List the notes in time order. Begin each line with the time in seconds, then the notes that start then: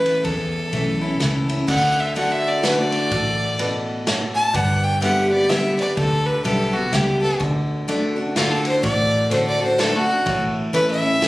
Already playing: E3 A3 C#4 E4 B4
0.06 ride
0.24 E2 A4, kick, ride
0.72 B1 E3 A3 C#4 E4, ride
1.01 C#4 E4
1.20 C#2 E3 A3 C#4 E4, snare, ride
1.49 C#4 E4, ride
1.68 D2 D3 F#4 A4 D5 F#5, kick, crash
2.01 E5
2.16 D3 A3 D4 F#4 A4 D5 F#5, ride
2.32 E5
2.48 D5
2.63 D3 A3 D4 F#4 A4 B4, snare, ride
2.80 D5
2.92 ride
3.11 A1 A2 F#4 A4 D5, kick, ride
3.59 B2 F#4 A4 B4, ride
4.07 A2 F#4 A4 C#5, snare, ride
4.36 A5
4.53 G1 G2 G4 B4 D5 F#5, kick, ride
4.84 G5
5.01 D3 G3 B3 G4 B4 E5 F#5, ride
5.31 B3 G4 D5
5.49 D3 G3 B3 G4 B4 D5 E5, snare, ride
5.78 B3 G4 D5, ride
5.97 D2 D3 G4 A4 B4 D5, kick, ride
6.26 B4
6.44 B1 D3 G3 B3 G4 A4 B4 E5, ride
6.73 B3 F#4 G4
6.92 C#2 D3 G3 B3 G4 B4 E5, snare, ride
7.21 B3 G4 A4
7.40 D2 D3 F#4 A4 D5, kick, ride
7.88 D3 A3 D4 F#4 A4 D5, ride
8.16 D4 F#4
8.36 D3 A3 D4 F4 F#4 A4 D5, snare, ride
8.52 A4
8.65 C5, ride
8.83 A1 A2 F#4 A4 D5, kick, ride
9.31 D3 A3 D4 F#4 A4 C5 C#5, ride
9.47 D5
9.60 D4 F#4 C5
9.78 D3 A3 D4 F#4 A4 D5, snare, ride
9.96 F#4
10.07 D4 F#4
10.26 A1 A2 E4 A4 C#5, kick, ride
10.73 E3 A3 C#4 E4 A4 B4 C#5, ride
10.91 E5
11.02 C#4 E4
11.21 E3 A3 C#4 E4 A4 E5, snare, ride